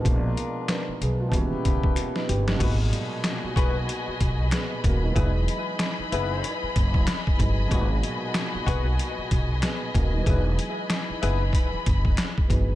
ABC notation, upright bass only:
X:1
M:4/4
L:1/16
Q:"Swing 16ths" 1/4=94
K:G#m
V:1 name="Upright bass" clef=bass
A,,,2 z4 B,,,2 D,, z C,,2 z2 =G,,,2 | G,,,2 z4 B,,,2 z2 B,,,2 z2 D,,,2 | E,,,2 z4 F,,,2 z2 F,,,2 z2 =G,,,2 | G,,,2 z4 B,,,2 z2 B,,,2 z2 D,,,2 |
E,,,2 z4 F,,,2 z2 F,,,2 z2 =G,,,2 |]